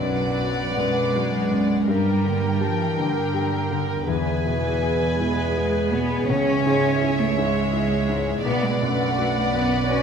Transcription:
Already playing: felt piano B1, double bass section B1, harp B2, cello section F#3, viola section B4, violin section D5 F#5
0.00 felt piano F#2, harp D4
0.38 felt piano F#4, harp B4
0.77 felt piano F#2, cello section G#3, harp D4
1.15 harp F#3, felt piano F#4
1.51 felt piano F#2, harp B3
1.88 felt piano G2, harp G2, double bass section G2, cello section G3, viola section A#4, violin section A#4 G5
2.24 felt piano D3, harp A#3
2.60 cello section F3, felt piano G4, harp A5
2.82 cello section E3
2.97 felt piano D3, cello section D3, harp A#3
3.34 harp G3, felt piano G4
3.70 felt piano D3, harp D3
4.07 felt piano E2, double bass section E2, harp E3, viola section G#4, violin section B4 G#5
4.45 felt piano B2, cello section E3, harp E4
4.82 harp G#4, felt piano G#4
5.20 felt piano B2, cello section G#3, harp E4
5.56 harp B3, felt piano G#4
5.92 felt piano B2, harp G#3, cello section B3
6.29 double bass section C#2, felt piano C#2, harp C#3, cello section C#4, violin section C#5 E5
6.65 felt piano G#2, harp E4
7.01 felt piano E4, harp G#4
7.20 cello section A3
7.37 felt piano G#2, cello section G#3, harp E4
7.73 harp C#4, felt piano E4
8.09 felt piano G#2, harp G#3
8.44 felt piano B1, double bass section B1, harp B2, cello section B3, viola section B4, violin section D5 F#5
8.64 cello section G#3
8.82 felt piano F#2, cello section A3, harp D4
9.18 harp F#4, felt piano F#4
9.54 felt piano F#2, cello section B3
9.89 harp B3, cello section C#4, felt piano F#4

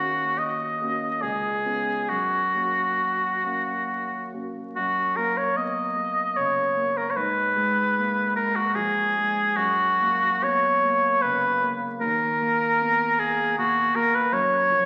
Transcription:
Already playing: grand piano D#2 A#3 C#4 F#4, oboe F#4
0.38 oboe D#5
0.81 grand piano A#3 C#4 F#4
1.22 grand piano C#2, oboe G#4
1.65 grand piano B3 C#4 F4
2.09 grand piano F#2, oboe F#4
2.54 grand piano A#3 C#4 F#4
3.45 grand piano A#3 C#4 F#4
4.33 grand piano A#3 C#4 F#4
4.75 grand piano F#2, oboe F#4
5.16 grand piano A#3, oboe A#4
5.37 oboe C#5
5.56 grand piano B3, oboe D#5
5.96 grand piano A#3
6.36 grand piano C#3, oboe C#5
6.76 grand piano A#3
6.97 oboe A#4
7.10 oboe C#5
7.16 grand piano G#2, oboe B4
7.56 grand piano G#3
7.97 grand piano A#3
8.36 grand piano G#3, oboe A#4
8.55 oboe F#4
8.75 grand piano F3, oboe G#4
9.16 grand piano G#3
9.56 grand piano F#2, oboe F#4
10.00 grand piano A#3
10.43 grand piano B3, oboe C#5
10.83 grand piano A#3
11.22 grand piano C#3, oboe B4
11.62 grand piano A#3
12.00 grand piano D#2, oboe A#4
12.40 grand piano A#3
12.81 grand piano B3
13.19 grand piano A#3, oboe G#4
13.57 grand piano A#2, oboe F#4
13.94 grand piano A#3, oboe A#4
14.14 oboe B4
14.32 grand piano F#2, oboe C#5
14.70 grand piano F3

